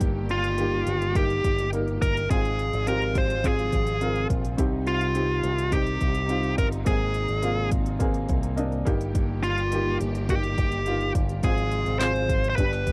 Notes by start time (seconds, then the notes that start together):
Already playing: G1 G2 D#3 G3 A#3 D#4 G4 A#5
0.01 kick, closed hi-hat
0.29 F4, closed hi-hat
0.44 closed hi-hat
0.58 A#3 D#4 G4, closed hi-hat
0.87 G1, closed hi-hat
1.02 closed hi-hat
1.15 A#3 D#4 G4, kick, closed hi-hat
1.30 closed hi-hat
1.44 G1, kick, closed hi-hat
1.58 closed hi-hat
1.73 A#3 D#4 A#4, closed hi-hat
1.88 closed hi-hat
2.01 G1 A#4, kick, closed hi-hat
2.17 closed hi-hat
2.30 G#1 G#2 C3 F3 G#3 C4 F4 G#4, kick, closed hi-hat
2.45 closed hi-hat
2.59 closed hi-hat
2.73 G#1, closed hi-hat
2.87 C4 F4 G4 A#4, closed hi-hat
3.02 closed hi-hat
3.15 C5, kick, closed hi-hat
3.30 closed hi-hat
3.44 C4 F4 G#4, kick, closed hi-hat
3.59 closed hi-hat
3.72 G#1, kick, closed hi-hat
3.87 closed hi-hat
4.01 C4 F4 A#4, closed hi-hat
4.15 closed hi-hat
4.30 A#1, kick, closed hi-hat
4.45 closed hi-hat
4.57 C2 C3 D#3 G3 C4 D#4 G4, kick, closed hi-hat
4.87 F4, closed hi-hat
5.01 closed hi-hat
5.15 C4 D#4 G4, closed hi-hat
5.43 C2, closed hi-hat
5.58 closed hi-hat
5.72 C4 D#4 G4, kick, closed hi-hat
5.87 closed hi-hat
6.01 C2, kick, closed hi-hat
6.14 closed hi-hat
6.28 C4 D#4 F4, closed hi-hat
6.43 closed hi-hat
6.58 G1 A#4, kick, closed hi-hat
6.72 closed hi-hat
6.85 G#1 G#2 C3 G#3 A#3 C4 G#4, kick, closed hi-hat
7.14 closed hi-hat
7.28 G#1, closed hi-hat
7.42 A#3 C4 F4, closed hi-hat
7.71 kick, closed hi-hat
7.86 closed hi-hat
7.99 A#3 C4 G#4, kick, closed hi-hat
8.14 closed hi-hat
8.29 C2, kick, closed hi-hat
8.43 closed hi-hat
8.56 A#3 C4 D4 D#5, closed hi-hat
8.72 closed hi-hat
8.85 G1 G2 D#3 G3 A#3 D#4 G4, kick, closed hi-hat
9.01 closed hi-hat
9.15 kick, closed hi-hat
9.43 F4, closed hi-hat
9.58 closed hi-hat
9.72 A#3 D#4 G4, closed hi-hat
10.01 G1, closed hi-hat
10.15 closed hi-hat
10.29 A#3 D#4 G4, kick, closed hi-hat
10.43 closed hi-hat
10.58 G1, kick, closed hi-hat
10.72 closed hi-hat
10.86 A#3 D#4 F4, closed hi-hat
11.01 closed hi-hat
11.15 G1, kick, closed hi-hat
11.29 closed hi-hat
11.43 G#1 G#2 C3 F3 G#3 C4 F4 G#4, kick, closed hi-hat
11.58 closed hi-hat
11.71 closed hi-hat
11.86 G#1, closed hi-hat
11.99 C4 F4 G#4 C5, snare, clap, closed hi-hat
12.16 closed hi-hat
12.29 kick, closed hi-hat
12.44 closed hi-hat
12.50 C5
12.56 G1 G2 D3 G3 B3 D4 G4 B4, kick, closed hi-hat
12.60 G4
12.73 snare, closed hi-hat
12.87 B1, kick, closed hi-hat